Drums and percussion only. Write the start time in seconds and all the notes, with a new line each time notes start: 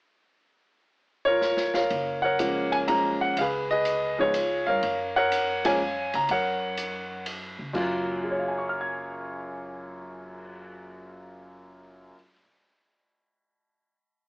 1.41 snare
1.57 snare
1.74 snare
1.90 ride
2.39 hi-hat pedal, ride
2.72 ride
2.88 ride
3.37 ride
3.85 hi-hat pedal, ride
4.34 hi-hat pedal, ride
4.83 ride
5.32 hi-hat pedal, ride
5.65 ride
6.14 ride
6.29 ride
6.77 hi-hat pedal, ride
7.26 ride
7.74 kick, crash
8.07 cymbal swell